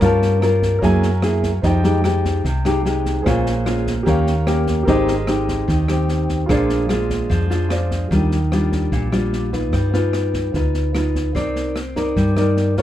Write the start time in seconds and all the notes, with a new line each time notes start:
0.00 G2 G3 C#4 F4 A#4 C#5 F5, kick, cross-stick, snare
0.05 A5
0.22 snare
0.42 C#4 F4 A#4, cross-stick, snare
0.62 kick, snare
0.79 F#2 F#3 A#3 E4 A#4 C#5 E5, kick, snare
0.83 G#4 G#5
1.03 snare
1.22 A#3 E4 G#4, cross-stick, snare
1.43 kick, snare
1.62 F2 F3 G#3 D#4 G4 C5 D#5, kick, snare
1.66 G5
1.84 G#3 D#4 G4, snare
2.04 G#3 D#4 G4, cross-stick, snare
2.25 kick, snare
2.45 C2 C3, kick, snare
2.65 G#3 D#4 G4, cross-stick, snare
2.85 G#3 D#4 G4, snare
3.06 kick, snare
3.22 A#1 A#2 G#3 G#4 C5
3.26 C#4 F4 C#5 F5, kick, cross-stick, snare
3.46 snare
3.65 G#3 C#4 F4, cross-stick, snare
3.87 kick, snare
4.03 D#2 D#3 A#3 C#4 G4 A#4, kick, snare
4.07 C#5 F5
4.27 snare
4.46 A#3 C#4 G4, cross-stick, snare
4.67 kick, snare
4.83 G4 A#4, snare
4.87 G#1 G#3 C4 D#4 G4 C5 D#5, kick
5.08 snare
5.27 C4 D#4 G4, cross-stick, snare
5.48 kick, snare
5.68 D#2 D#3, kick, snare
5.88 C4 D#4 G4, cross-stick, snare
6.09 snare
6.29 kick, snare
6.46 A#1 A#2 G#3 D4 F4 G#4, kick, cross-stick, snare
6.50 C5 D5
6.69 snare
6.89 G#3 D4 F4, cross-stick, snare
7.10 kick, snare
7.30 F2 F3, kick, snare
7.50 G#3 D4 F4, snare
7.69 F4 G#4 C5 D5, cross-stick, snare
7.91 kick, snare
8.11 D#2 D#3 G3 D4 F4, kick, snare
8.32 snare
8.52 G3 D4 F4, cross-stick, snare
8.72 kick, snare
8.92 A#1 A#2, kick, snare
9.12 G3 D4 F4, cross-stick, snare
9.33 snare
9.53 D#4 F4 B4, kick, snare
9.72 G2 G3, kick, cross-stick, snare
9.93 D#4 F4 B4, snare
10.13 cross-stick, snare
10.34 kick, snare
10.54 D2 D#4 F4 B4, kick, snare
10.74 snare
10.95 D#4 F4 B4, cross-stick, snare
11.15 kick, snare
11.35 C2 C4 D#4 A#4 D5, kick, snare
11.56 snare
11.76 cross-stick, snare
11.96 D#4 A#4 D5, kick, snare
12.16 G2 G3, kick, snare
12.37 D#4 A#4 D5, cross-stick, snare
12.57 snare
12.77 F4 A#4 C#5, kick, snare